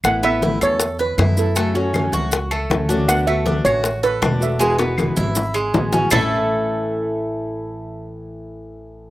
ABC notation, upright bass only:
X:1
M:4/4
L:1/8
Q:1/4=158
K:A
V:1 name="Upright bass" clef=bass
A,,,3 E,,3 F,,2- | F,,3 C,,3 D,,2- | D,,3 A,,,3 E,,,2- | E,,,3 G,,,3 A,,,2 |
A,,,8- | A,,,8 |]